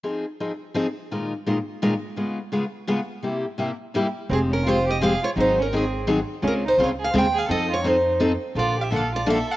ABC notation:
X:1
M:3/4
L:1/16
Q:"Swing" 1/4=169
K:Fm
V:1 name="Steel-string acoustic guitar"
z12 | z12 | z12 | z12 |
A2 B2 c2 e2 f2 d2 | c2 B2 A4 z4 | B2 c2 d2 f2 g2 f2 | e2 d2 c4 z4 |
=d2 =e2 f2 d2 e2 f2 |]
V:2 name="Violin"
z12 | z12 | z12 | z12 |
C2 D2 F2 G2 A2 F2 | E2 D2 C4 z4 | D2 E2 F2 A2 c2 A2 | =A2 F2 E4 z4 |
F2 G2 =A2 F2 A2 A2 |]
V:3 name="Steel-string acoustic guitar"
[F,CEA]2 z2 [F,CEA] z3 [F,CEA] z3 | [B,,E,A,EFB]2 z2 [B,,E,A,EFB] z3 [B,,E,A,EFB] z3 | [D,A,_CFA]2 z2 [D,A,CFA] z3 [D,A,CFA] z3 | [C,G,B,=EG]2 z2 [C,G,B,EG] z3 [C,G,B,EG] z3 |
[F,A,CG]2 z2 [F,A,CG] z3 [F,A,CG] z3 | [E,_G,CEA]2 z2 [E,G,CEA] z3 [E,G,CEA] z3 | [D,A,CFA]2 z2 [D,A,CFA] z3 [D,A,CFA] z3 | [F,CE=A]2 z2 [F,CEA] z3 [F,CEA] z3 |
[=D,F,B,=D=A]2 z2 [D,F,B,DA] z3 [D,F,B,DA] z3 |]
V:4 name="Upright bass" clef=bass
z12 | z12 | z12 | z12 |
F,,,12 | A,,,12 | D,,4 D,,4 E,,4 | F,,12 |
B,,,12 |]